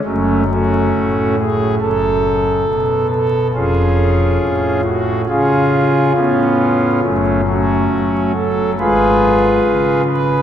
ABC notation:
X:1
M:4/4
L:1/8
Q:1/4=69
K:F#m
V:1 name="Pipe organ"
[F,A,C] [A,CF]2 G A3 A | [C^EG]3 F [CEG]2 [B,CE]2 | [F,A,C] [A,CF]2 A [^EGB]3 B |]
V:2 name="Pipe organ" clef=bass
[F,,,F,,]2 A,,2 [F,,,F,,]2 B,,2 | [^E,,,^E,,]2 A,,2 C,2 A,,2 | [F,,,F,,]2 F,2 [G,,,G,,]2 C,2 |]